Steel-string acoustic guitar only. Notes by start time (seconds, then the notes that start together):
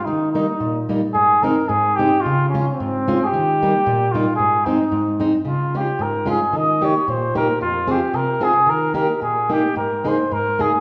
0.07 D#3
0.35 G3 A#3 D#4
0.60 A#2
0.89 G3 A#3 D#4
1.15 G#2
1.43 G#3 C4 D#4
1.69 G#2
1.99 G#3 C4 D#4
2.26 C#3
2.54 G#3 C#4 F4
2.80 G#2
3.08 G#3 C#4 F4
3.34 D#3
3.62 G3 A#3 D#4
3.86 A#2
4.14 G3 A#3 D#4
4.39 G#2
4.66 G#3 C4 D#4
4.92 G#2
5.20 G#3 C4 D#4
5.45 C#3
5.75 G#3 C#4 F4
5.99 G#2
6.26 G#3 C#4 F4
6.53 D#3
6.81 A#3 D#4 G4
7.08 A#2
7.35 A#3 D#4 G4
7.61 F2
7.87 C4 F4 G#4
8.14 C3
8.41 C4 F4 G#4
8.67 D#3
8.94 A#3 D#4 G4
9.22 A#2
9.50 A#3 D#4 G4
9.76 G#2
10.04 A#3 D#4 G#4
10.31 G#2
10.59 A#3 D#4 G#4